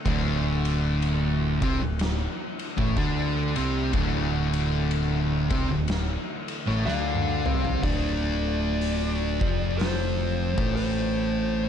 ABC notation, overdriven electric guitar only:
X:1
M:4/4
L:1/16
Q:"Swing" 1/4=62
K:Dm
V:1 name="Overdriven electric guitar" clef=bass
[D,,D,]6 [C,C] D,,2 z2 [A,,A,] [D,D]2 [C,C]2 | [D,,D,]6 [C,C] D,,2 z2 [A,,A,] [D,D]2 [C,C]2 | z16 |]